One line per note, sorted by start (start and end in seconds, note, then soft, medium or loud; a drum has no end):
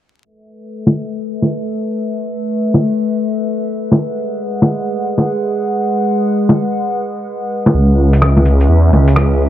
0.25 3.96 A3 medium
0.25 3.97 A4 medium
0.25 7.71 B4 medium
0.25 3.96 E5 medium
0.87 low bongo soft
1.42 low bongo soft
2.74 low bongo soft
3.92 low bongo soft
4.01 7.72 G#3 medium
4.01 7.72 G#4 medium
4.01 7.72 F#5 medium
4.62 low bongo soft
5.18 low bongo soft
6.49 low bongo soft
7.66 low bongo soft
7.74 8.68 C#2 medium
7.74 9.49 C#4 medium
7.74 9.49 G#4 medium
7.74 9.49 B4 medium
7.74 9.49 E5 medium
8.13 closed hi-hat soft
8.22 cross-stick loud
8.37 low bongo soft
8.45 closed hi-hat soft
8.61 closed hi-hat soft
8.69 8.91 E2 medium
8.92 9.49 C#2 loud
8.92 low bongo soft
9.08 closed hi-hat soft
9.16 cross-stick medium